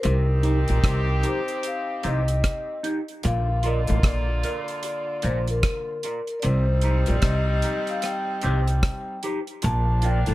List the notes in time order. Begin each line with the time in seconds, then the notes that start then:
0.02 C2 C3 C4 D#4 G4 A#4, closed hi-hat
0.43 D#4 G4 C5, closed hi-hat
0.68 A#1 A#2, closed hi-hat
0.84 C2 C3, kick, cross-stick, closed hi-hat
1.23 D#4 G4 C5, closed hi-hat
1.28 C5
1.48 closed hi-hat
1.63 closed hi-hat
1.67 F5
2.03 C2 C3 D#4 G4 C5 D#5, closed hi-hat
2.28 closed hi-hat
2.44 kick, cross-stick, closed hi-hat
2.83 D#4 G4 C5, closed hi-hat
3.08 closed hi-hat
3.23 A#1 A#2 D3 A#3 F4 F5, closed hi-hat
3.63 F4 A#4 D5 D#5, closed hi-hat
3.87 A1 A2, closed hi-hat
4.03 A#1 A#2 D5, kick, cross-stick, closed hi-hat
4.43 F4 A#4 D5, closed hi-hat
4.68 closed hi-hat
4.83 D5, closed hi-hat
5.22 A#1 A#2 F4 A#4 C5 D5, closed hi-hat
5.47 A#4, closed hi-hat
5.63 kick, cross-stick, closed hi-hat
6.03 F4 A#4 D5, closed hi-hat
6.27 A#4, closed hi-hat
6.40 C3 G3 D5, closed hi-hat
6.44 C2 C4 D#4 C5
6.82 D#4 G4 C5, closed hi-hat
7.06 A#1 A#2, closed hi-hat
7.10 D5
7.22 C2 C3, kick, cross-stick, closed hi-hat
7.62 D#4 G4 C5, closed hi-hat
7.87 F5, closed hi-hat
8.02 G5, cross-stick, closed hi-hat
8.41 C2 C3 D#4 G4 C5, closed hi-hat
8.68 closed hi-hat
8.83 kick, cross-stick, closed hi-hat
9.23 D#4 G4 C5, closed hi-hat
9.47 closed hi-hat
9.62 A#1 A#2 F3 A#3 D4 A5, closed hi-hat
10.02 F4 A#4 D5 G5, closed hi-hat
10.26 A1 A2, closed hi-hat